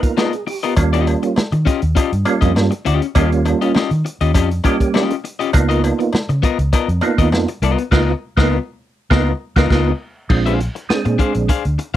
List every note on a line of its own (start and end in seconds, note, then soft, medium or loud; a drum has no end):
0.00 0.35 A#3 loud
0.00 0.35 B3 medium
0.00 0.36 D#4 medium
0.00 0.36 F4 loud
0.00 0.16 A#4 medium
0.00 muted clean electric guitar stroke medium
0.00 kick medium
0.00 closed hi-hat medium
0.17 0.31 B3 medium
0.17 0.32 F4 medium
0.17 0.45 G#4 medium
0.17 0.32 A#4 loud
0.17 0.32 D#5 loud
0.17 snare medium
0.17 cowbell medium
0.33 closed hi-hat soft
0.47 0.75 G4 medium
0.47 muted clean electric guitar stroke medium
0.47 open hi-hat medium
0.63 0.73 B3 medium
0.63 0.73 F4 medium
0.63 0.73 A#4 medium
0.63 0.73 D#5 medium
0.63 closed hi-hat medium
0.76 1.14 D#2 loud
0.76 0.84 F#3 medium
0.76 1.40 A#3 medium
0.76 1.40 C#4 medium
0.76 1.40 F4 loud
0.76 muted clean electric guitar stroke soft
0.76 kick loud
0.76 closed hi-hat medium
0.76 cowbell medium
0.83 1.43 G3 medium
0.93 1.06 C#4 medium
0.93 1.06 F4 medium
0.93 1.06 G4 medium
0.93 1.07 D#5 medium
0.93 closed hi-hat medium
1.07 muted clean electric guitar stroke soft
1.07 closed hi-hat medium
1.07 cowbell medium
1.23 muted clean electric guitar stroke soft
1.23 closed hi-hat medium
1.36 muted fingered electric bass stroke medium
1.36 snare loud
1.36 cowbell medium
1.52 1.64 D#3 loud
1.52 muted clean electric guitar stroke soft
1.52 closed hi-hat soft
1.66 1.80 C#4 medium
1.66 1.80 F4 medium
1.66 1.81 G4 medium
1.66 1.81 D#5 medium
1.66 kick loud
1.66 snare soft
1.66 closed hi-hat medium
1.82 1.94 D#2 loud
1.82 closed hi-hat medium
1.95 2.10 C#4 medium
1.95 2.10 F4 loud
1.95 2.10 G4 medium
1.95 2.11 D#5 medium
1.95 kick loud
1.95 closed hi-hat medium
1.95 cowbell medium
2.12 2.24 G2 medium
2.12 closed hi-hat soft
2.25 2.74 G3 medium
2.25 2.74 A#3 medium
2.25 2.74 C#4 medium
2.25 2.74 F4 loud
2.25 muted clean electric guitar stroke soft
2.25 closed hi-hat medium
2.25 cowbell medium
2.41 2.56 F2 loud
2.41 2.52 C#4 medium
2.41 2.52 F4 medium
2.41 2.51 G4 medium
2.41 2.51 D#5 medium
2.41 kick medium
2.41 closed hi-hat medium
2.55 2.69 G2 loud
2.55 muted clean electric guitar stroke soft
2.55 snare loud
2.55 cowbell medium
2.71 muted clean electric guitar stroke soft
2.71 closed hi-hat medium
2.85 2.99 D2 medium
2.85 3.05 C#4 medium
2.85 3.02 F4 loud
2.85 3.02 G4 loud
2.85 3.01 D#5 loud
2.85 closed hi-hat medium
3.02 muted clean electric guitar stroke soft
3.02 closed hi-hat medium
3.15 3.53 D#2 loud
3.15 3.78 G3 loud
3.15 3.79 A#3 medium
3.15 3.29 C#4 medium
3.15 3.79 C#4 medium
3.15 3.79 F4 loud
3.15 3.30 F4 medium
3.15 3.30 G4 loud
3.15 3.30 D#5 loud
3.15 kick loud
3.15 closed hi-hat medium
3.15 cowbell medium
3.31 muted clean electric guitar stroke medium
3.31 closed hi-hat medium
3.45 muted clean electric guitar stroke medium
3.45 closed hi-hat medium
3.45 cowbell medium
3.61 3.72 C#4 medium
3.61 3.72 F4 medium
3.61 3.71 G4 medium
3.61 3.71 D#5 medium
3.61 closed hi-hat soft
3.75 3.89 C#4 medium
3.75 3.89 F4 medium
3.75 3.90 G4 medium
3.75 3.90 D#5 loud
3.75 muted fingered electric bass stroke medium
3.75 snare loud
3.75 cowbell medium
3.91 4.02 D#3 loud
3.91 closed hi-hat soft
4.05 muted clean electric guitar stroke soft
4.05 closed hi-hat medium
4.21 4.35 D#2 medium
4.21 4.31 C#4 soft
4.21 4.31 F4 medium
4.21 4.31 G4 medium
4.21 4.31 D#5 medium
4.21 closed hi-hat medium
4.34 4.59 F2 loud
4.34 4.49 C#4 medium
4.34 4.49 F4 medium
4.34 4.49 G4 loud
4.34 4.49 D#5 loud
4.34 kick loud
4.34 closed hi-hat loud
4.34 cowbell medium
4.51 muted clean electric guitar stroke soft
4.51 closed hi-hat soft
4.64 5.12 G3 loud
4.64 5.12 A#3 medium
4.64 4.75 C#4 medium
4.64 5.12 C#4 medium
4.64 4.75 F4 medium
4.64 5.13 G4 loud
4.64 4.76 G4 medium
4.64 4.76 D#5 medium
4.64 kick medium
4.64 closed hi-hat medium
4.64 cowbell medium
4.80 muted clean electric guitar stroke soft
4.80 kick medium
4.80 closed hi-hat medium
4.94 5.14 C#4 loud
4.94 5.14 F4 loud
4.94 5.15 G4 medium
4.94 5.15 D#5 medium
4.94 snare medium
4.94 cowbell medium
5.11 closed hi-hat medium
5.24 muted clean electric guitar stroke soft
5.24 closed hi-hat medium
5.39 5.50 C#4 medium
5.39 5.50 F4 medium
5.39 5.50 G4 medium
5.39 5.49 D#5 medium
5.39 closed hi-hat medium
5.53 5.91 C#2 loud
5.53 6.16 A#3 loud
5.53 6.17 B3 medium
5.53 6.17 D#4 medium
5.53 6.17 F4 loud
5.53 muted clean electric guitar stroke soft
5.53 kick loud
5.53 closed hi-hat loud
5.53 cowbell loud
5.69 5.81 B3 medium
5.69 5.82 F4 medium
5.69 5.82 A#4 medium
5.69 5.82 D#5 loud
5.69 closed hi-hat medium
5.83 muted clean electric guitar stroke soft
5.83 closed hi-hat medium
5.83 cowbell medium
5.99 muted clean electric guitar stroke medium
5.99 closed hi-hat soft
6.13 muted fingered electric bass stroke medium
6.13 snare loud
6.13 cowbell medium
6.29 6.40 C#3 loud
6.29 muted clean electric guitar stroke soft
6.29 closed hi-hat soft
6.43 6.57 B3 medium
6.43 6.57 F4 medium
6.43 6.57 A#4 medium
6.43 6.58 D#5 loud
6.43 kick loud
6.43 closed hi-hat medium
6.59 6.70 C#2 medium
6.59 muted clean electric guitar stroke soft
6.59 closed hi-hat medium
6.73 6.87 B3 medium
6.73 6.87 F4 medium
6.73 6.87 A#4 loud
6.73 6.87 D#5 loud
6.73 kick loud
6.73 closed hi-hat loud
6.73 cowbell medium
6.88 7.00 F2 medium
6.88 closed hi-hat soft
7.01 7.50 A#3 loud
7.01 7.50 B3 medium
7.01 7.50 D#4 medium
7.01 7.50 F4 loud
7.01 muted clean electric guitar stroke medium
7.01 closed hi-hat medium
7.01 cowbell medium
7.18 7.32 D#2 medium
7.18 7.29 B3 medium
7.18 7.28 F4 medium
7.18 7.28 A#4 medium
7.18 7.28 D#5 medium
7.18 kick medium
7.18 closed hi-hat medium
7.32 7.45 F2 loud
7.32 muted clean electric guitar stroke medium
7.32 snare medium
7.32 cowbell medium
7.48 muted clean electric guitar stroke soft
7.48 closed hi-hat medium
7.62 7.75 C2 loud
7.62 7.82 B3 medium
7.62 7.79 F4 medium
7.62 7.78 A#4 medium
7.62 7.77 D#5 medium
7.62 closed hi-hat medium
7.78 muted clean electric guitar stroke soft
7.78 closed hi-hat medium
7.91 8.12 C#2 loud
7.91 8.12 A#3 loud
7.91 8.12 B3 loud
7.91 8.12 D#4 loud
7.91 8.12 F4 loud
7.91 8.13 F4 loud
7.91 8.13 A#4 loud
7.91 8.13 D#5 loud
7.91 kick loud
7.91 snare loud
7.91 crash medium
8.37 8.57 C#2 medium
8.37 8.57 A#3 loud
8.37 8.57 B3 loud
8.37 8.58 B3 loud
8.37 8.57 D#4 loud
8.37 8.57 F4 loud
8.37 8.58 F4 loud
8.37 8.57 A#4 medium
8.37 8.57 D#5 loud
8.37 kick loud
8.37 snare loud
9.10 9.31 C#2 loud
9.10 9.31 A#3 loud
9.10 9.31 B3 loud
9.10 9.31 D#4 loud
9.10 9.31 F4 loud
9.10 9.32 A#4 loud
9.10 9.32 D#5 loud
9.10 kick loud
9.10 snare loud
9.56 9.68 C#2 loud
9.56 9.68 A#3 loud
9.56 9.68 B3 loud
9.56 9.68 D#4 loud
9.56 9.68 F4 loud
9.56 9.69 F4 loud
9.56 9.69 A#4 loud
9.56 9.69 D#5 loud
9.56 kick loud
9.56 snare loud
9.70 9.91 C#2 loud
9.70 9.90 A#3 medium
9.70 9.91 B3 loud
9.70 9.91 D#4 loud
9.70 9.91 F4 loud
9.70 9.92 A#4 loud
9.70 9.92 D#5 loud
9.70 kick loud
9.70 snare medium
9.70 crash medium
10.29 10.67 A#1 medium
10.29 10.61 G#3 medium
10.29 10.61 C4 medium
10.29 10.61 D4 medium
10.29 10.61 F4 loud
10.29 muted clean electric guitar stroke soft
10.29 kick loud
10.29 crash loud
10.46 10.58 D4 medium
10.46 10.59 G#4 medium
10.46 10.59 C5 medium
10.46 10.60 F5 medium
10.46 closed hi-hat medium
10.59 muted clean electric guitar stroke soft
10.59 closed hi-hat medium
10.75 muted clean electric guitar stroke soft
10.75 closed hi-hat soft
10.89 11.52 G#3 medium
10.89 11.52 C4 medium
10.89 11.52 D4 medium
10.89 11.53 G#4 medium
10.89 muted fingered electric bass stroke soft
10.89 snare loud
11.05 11.17 A#2 loud
11.05 muted clean electric guitar stroke soft
11.05 closed hi-hat soft
11.19 11.33 D4 medium
11.19 11.33 G#4 medium
11.19 11.33 C5 medium
11.19 11.33 F5 medium
11.19 kick loud
11.19 closed hi-hat medium
11.34 11.47 A#1 medium
11.34 muted clean electric guitar stroke soft
11.34 closed hi-hat medium
11.49 11.63 D4 medium
11.49 11.63 G#4 medium
11.49 11.63 C5 medium
11.49 11.63 F5 loud
11.49 kick loud
11.49 closed hi-hat loud
11.65 11.76 D2 medium
11.65 closed hi-hat soft
11.78 muted clean electric guitar stroke soft
11.78 closed hi-hat medium